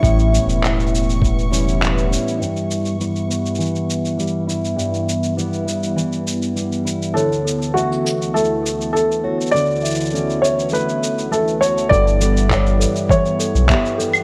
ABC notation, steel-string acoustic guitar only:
X:1
M:4/4
L:1/8
Q:1/4=101
K:Glyd
V:1 name="Steel-string acoustic guitar"
[A,,G,CE] C4 [G,CE] E C | G,,2 [G,B,E] B, E,2 G, E | G,,2 [G,B,E] B, E,2 G, E | D,2 [A,CF]2 A,2 A, F |
D,2 [A,CF] C A,2 A, F | G,, [G,B,G] G,2 E,2 [G,B,G] B, |]